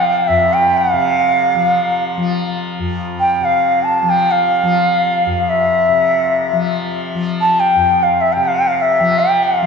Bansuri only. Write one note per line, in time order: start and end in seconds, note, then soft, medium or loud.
0.00 0.29 F5 medium
0.28 0.55 E5 medium
0.53 0.79 G5 medium
0.78 2.45 F5 medium
3.20 3.46 G5 medium
3.44 3.85 F5 medium
3.83 4.11 A5 medium
4.10 4.33 G5 medium
4.31 5.51 F5 medium
5.49 6.58 E5 medium
7.41 7.61 A5 medium
7.60 8.05 G5 medium
8.03 8.22 F5 medium
8.21 8.34 E5 medium
8.33 8.46 G5 medium
8.45 8.58 F5 medium
8.56 8.70 G5 medium
8.68 8.83 F5 medium
8.82 9.21 E5 medium
9.19 9.45 G5 medium
9.44 9.66 F5 medium